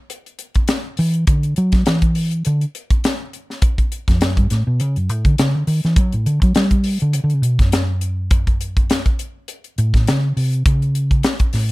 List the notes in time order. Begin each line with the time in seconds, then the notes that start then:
0.10 closed hi-hat
0.26 closed hi-hat
0.39 closed hi-hat
0.55 kick, closed hi-hat
0.68 snare, closed hi-hat
0.97 E3, open hi-hat
1.14 closed hi-hat
1.27 D3, kick, closed hi-hat
1.43 closed hi-hat
1.56 F#3, closed hi-hat
1.72 kick, snare, closed hi-hat
1.86 E3, snare, closed hi-hat
2.02 kick, closed hi-hat
2.15 open hi-hat
2.31 closed hi-hat
2.45 D3, closed hi-hat
2.61 closed hi-hat
2.75 closed hi-hat
2.90 kick, closed hi-hat
3.04 snare, closed hi-hat
3.33 closed hi-hat
3.50 snare
3.62 kick, closed hi-hat
3.78 kick, closed hi-hat
3.92 closed hi-hat
4.08 F2, kick, snare, closed hi-hat
4.21 F#2, snare, closed hi-hat
4.37 G2, kick, closed hi-hat
4.50 A2, snare, closed hi-hat
4.67 B2
4.80 C#3, closed hi-hat
4.96 F#2, closed hi-hat
5.09 A2, closed hi-hat
5.25 D3, kick, closed hi-hat
5.38 C#3, snare, closed hi-hat
5.55 D3
5.67 D#3, open hi-hat
5.84 E3, snare, closed hi-hat
5.96 F#3, kick, closed hi-hat
6.12 A2, closed hi-hat
6.26 D3, closed hi-hat
6.42 F#3, kick, closed hi-hat
6.55 G3, snare, closed hi-hat
6.71 kick, closed hi-hat
6.84 open hi-hat
7.00 D3, closed hi-hat
7.13 C#3, closed hi-hat
7.24 D3
7.30 C#3, closed hi-hat
7.42 B2, closed hi-hat
7.59 F#2, kick, snare, closed hi-hat
7.72 snare, closed hi-hat
8.01 closed hi-hat
8.31 kick, closed hi-hat
8.47 kick, closed hi-hat
8.61 closed hi-hat
8.77 kick, closed hi-hat
8.90 snare, closed hi-hat
9.06 kick, closed hi-hat
9.19 closed hi-hat
9.48 closed hi-hat
9.64 closed hi-hat
9.78 A2, closed hi-hat
9.94 kick, snare, closed hi-hat
10.07 C#3, snare, closed hi-hat
10.37 C3, open hi-hat
10.53 closed hi-hat
10.66 C#3, kick, closed hi-hat
10.82 closed hi-hat
10.95 closed hi-hat
11.11 kick, closed hi-hat
11.23 snare, closed hi-hat
11.39 kick, closed hi-hat
11.53 A2, snare, open hi-hat